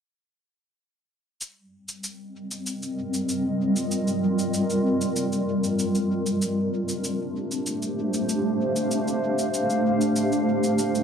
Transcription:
1.41 ambient pad G3, shaker
1.59 ambient pad C4
1.85 ambient pad A#4 D#5, shaker
2.04 shaker
2.32 ambient pad F4
2.51 shaker
2.66 shaker
2.82 shaker
3.14 shaker
3.29 shaker
3.76 shaker
3.91 shaker
4.07 shaker
4.39 shaker
4.54 shaker
4.70 shaker
5.01 shaker
5.16 shaker
5.32 shaker
5.64 shaker
5.79 shaker
5.95 shaker
6.26 shaker
6.42 ambient pad A3, shaker
6.49 ambient pad D4
6.73 ambient pad G4
6.89 shaker
7.04 shaker
7.11 ambient pad C5
7.51 shaker
7.62 ambient pad F5
7.66 shaker
7.82 shaker
8.14 shaker
8.29 shaker
8.76 shaker
8.91 shaker
9.08 shaker
9.39 shaker
9.54 shaker
9.70 shaker
10.01 shaker
10.16 shaker
10.32 shaker
10.64 shaker
10.79 shaker
10.95 shaker

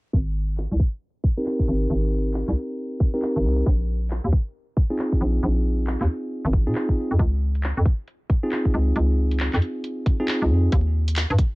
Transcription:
0.13 fm bass G#1, kick
0.57 clap
0.71 fm bass C2
0.80 kick
1.24 kick
1.37 tine electric piano C4 D#4 G4 A#4
1.46 clap
1.59 kick
1.68 fm bass G#1
1.90 fm bass G#1
2.34 clap
2.48 fm bass C2, clap
3.00 kick
3.14 tine electric piano C4 D#4 G4 A#4
3.22 clap
3.36 fm bass G#1
3.44 fm bass C2
3.66 fm bass A#1, kick
4.11 clap
4.24 fm bass D#2
4.33 kick
4.77 kick
4.90 tine electric piano C4 D#4 F4 G#4
4.99 clap
5.12 kick
5.21 fm bass A#1
5.43 fm bass A#1
5.87 clap
6.01 fm bass D#2, clap
6.45 fm bass G#1
6.53 kick
6.67 fm bass A#2, tine electric piano C4 D#4 F4 G#4
6.75 clap
6.89 kick
7.11 fm bass F2
7.19 fm bass C#2, kick, closed hi-hat
7.55 closed hi-hat
7.63 clap, closed hi-hat
7.77 fm bass F2
7.85 kick, closed hi-hat
8.08 closed hi-hat
8.30 kick, closed hi-hat
8.43 tine electric piano C4 D#4 F4 G#4
8.52 clap, closed hi-hat
8.65 kick
8.74 fm bass C#2
8.96 fm bass C#2, closed hi-hat
9.31 closed hi-hat
9.40 clap, closed hi-hat
9.53 fm bass F2, clap
9.62 closed hi-hat
9.84 closed hi-hat
10.06 kick, closed hi-hat
10.20 tine electric piano C4 D#4 F4 G#4
10.28 clap, closed hi-hat
10.42 fm bass C#2
10.50 fm bass F2
10.72 fm bass D#2, kick, closed hi-hat
11.08 closed hi-hat
11.16 clap, closed hi-hat
11.30 fm bass G2
11.39 kick, closed hi-hat

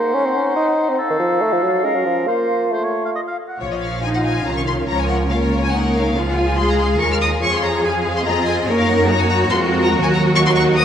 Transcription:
Already playing: bassoon A#3, clarinet D#4, oboe C5, flute section F#5
0.14 bassoon C#4
0.25 bassoon C4
0.36 bassoon C#4
0.56 bassoon D#4
0.89 bassoon C4
0.99 oboe A4, flute section F5
1.10 bassoon D#3
1.19 bassoon F3
1.41 bassoon A3
1.52 bassoon F3
1.62 bassoon F#3
1.84 bassoon G#3, clarinet C#4, oboe A#4
1.96 bassoon F#3
2.06 bassoon F3
2.27 bassoon A#3, clarinet F4, oboe C5
2.71 bassoon A3, oboe C5
2.84 oboe C#5
3.05 oboe F5
3.16 oboe D#5
3.28 oboe F5
3.48 oboe F#5
3.59 double bass section A#1, viola section F3 F4, violin section C#5
3.71 violin section D#5
3.82 violin section F5
4.01 cello section D#4, viola section F4, violin section F5 G#5
4.14 violin section F#5
4.24 violin section G#5
4.44 double bass section C2, viola section D#3, cello section C#4, violin section A#5
4.57 violin section C#6
4.67 violin section C6
4.87 double bass section C#2, viola section F3 F4, violin section A#4 C#5 A#5
4.98 violin section G#5
5.09 violin section F#5
5.29 viola section A#3 F4, violin section A#4 C#5 F5
5.63 violin section G#5
5.72 viola section A#3 D#4, violin section A#4 F#5
5.95 violin section F5
6.14 double bass section C#2, viola section F3 F4, cello section F4, violin section G#4 F5
6.27 violin section F#5
6.36 violin section G#5
6.57 viola section G#3, cello section G#4, violin section F5 C6
6.70 violin section A#5
6.80 violin section C6
6.99 double bass section D#2, viola section G#3 F4, cello section A#4, violin section C#6
7.12 violin section F6
7.22 violin section D#6
7.41 double bass section F2, viola section F3 F4, cello section G#4, violin section C#5 C#6
7.53 violin section C6
7.63 violin section A#5
7.83 violin section G#4 F5 G#5, viola section G#4
8.16 violin section C6
8.25 viola section C4, cello section F4, violin section D#5 A#5
8.47 violin section G#5
8.67 double bass section F#2, viola section A#3 D#4, cello section A#4, violin section A#4 C#5
8.78 violin section F5
8.88 violin section F#5
9.08 cello section F#4, violin section F#4 C#5 A#5
9.20 violin section G#5
9.29 violin section A#5
9.50 double bass section F2, viola section G#3 F4, violin section A#4 C6
9.82 violin section A#5
9.92 double bass section D#2, viola section F#3 F#4, violin section F#4
10.03 violin section G#5
10.14 violin section A#5
10.35 violin section D#4 A#4 C#6, cello section F#4
10.47 violin section C6
10.55 violin section C#6
10.76 violin section A#4 C5 D#6

